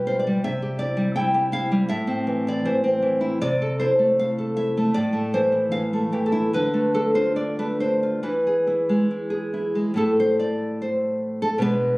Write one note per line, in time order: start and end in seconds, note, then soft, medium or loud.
0.00 0.39 B2 medium
0.00 0.26 G3 soft
0.00 0.43 G4 soft
0.07 0.44 F4 soft
0.07 0.18 C5 medium
0.19 0.43 D5 medium
0.27 0.44 G3 soft
0.44 1.87 C3 medium
0.44 0.78 E5 medium
0.62 1.33 G4 soft
0.79 1.14 E4 soft
0.79 1.14 D5 medium
0.97 1.70 G3 soft
1.16 1.51 E4 soft
1.16 1.51 G5 medium
1.34 1.90 G4 soft
1.52 1.89 E4 soft
1.52 1.88 F5 medium
1.72 1.88 G3 soft
1.89 3.37 A2 medium
1.89 2.43 E5 medium
2.07 2.83 C4 soft
2.27 2.64 E3 soft
2.47 3.20 E4 soft
2.47 2.66 D5 medium
2.65 3.01 E3 soft
2.65 3.02 C5 medium
2.84 3.42 C4 soft
3.02 3.41 E3 soft
3.21 3.41 E4 soft
3.41 4.91 C3 medium
3.41 3.78 D5 medium
3.62 4.37 A4 soft
3.80 4.18 E4 soft
3.80 4.16 C5 medium
3.99 4.76 A3 soft
4.19 4.56 E4 soft
4.19 4.56 F5 medium
4.38 4.96 A4 soft
4.57 4.95 E4 soft
4.57 4.93 E5 medium
4.77 4.96 A3 soft
4.94 6.48 A2 medium
4.94 5.31 D5 medium
5.13 5.92 A3 soft
5.34 5.71 E3 soft
5.34 5.70 C5 medium
5.52 6.31 E4 soft
5.72 6.11 E3 soft
5.72 6.09 F5 medium
5.93 6.53 A3 soft
6.12 6.52 E3 soft
6.12 6.25 G4 medium
6.26 6.51 A4 medium
6.32 6.52 E4 soft
6.53 8.21 D3 medium
6.53 6.93 B4 medium
6.74 7.58 A3 soft
6.94 7.35 D4 soft
6.94 7.14 A4 medium
7.15 8.02 F4 soft
7.15 7.36 C5 medium
7.36 7.80 D4 soft
7.36 7.57 D5 medium
7.59 8.22 A3 soft
7.59 7.80 B4 medium
7.80 8.25 D4 soft
7.80 8.23 C5 medium
8.03 8.25 F4 soft
8.23 9.93 E3 soft
8.23 9.51 B4 medium
8.47 9.29 G#4 soft
8.67 9.10 E4 soft
8.89 9.74 G#3 soft
9.11 9.52 E4 soft
9.30 9.96 G#4 soft
9.54 9.96 E4 soft
9.75 9.95 G#3 soft
9.94 11.56 A2 soft
9.94 11.57 A3 soft
9.94 11.58 E4 soft
9.94 10.18 A4 medium
10.20 10.39 C5 medium
10.40 10.79 D5 medium
10.82 11.40 C5 soft
11.42 11.62 A4 medium
11.58 11.98 B2 medium
11.58 11.98 G#3 soft
11.58 11.98 D4 soft
11.58 11.98 B4 medium